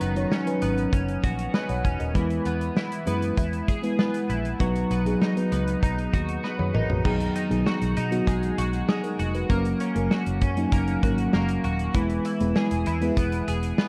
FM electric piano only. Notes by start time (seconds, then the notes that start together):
Already playing: F#3 C#4 D#4 B4
0.16 F#3 C#4 D#4 C#5
0.46 F#3 C#4 D#4 B4
1.54 D#5 G#5
1.69 C#5 F#5
2.00 A#4 D#5
2.14 G#3 B3 E4 B4
3.06 G#3 B3 E4 B4
3.82 G#3 B3 E4 B4
4.59 F#3 B3 D#4 B4
5.05 F#3 B3 D#4 G#4
5.36 F#3 B3 D#4 B4
6.59 G#4 C#5
6.74 A#4 D#5
6.90 F#4 B4
7.04 F#3 B3 D#4 G#4
7.50 F#3 B3 D#4 G#4
8.11 F#3 B3 D#4 F#4
8.88 D#4 G#4
9.04 D#4 A#4
9.35 F#4 B4
9.49 F#3 A#3 C#4 A#4
9.95 F#3 A#3 C#4 A#4
10.57 F#3 A#3 C#4 D#4
11.03 F#3 A#3 C#4 A#4
11.94 G#3 B3 E4 B4
12.40 G#3 B3 E4 B4
13.01 G#3 B3 E4 B4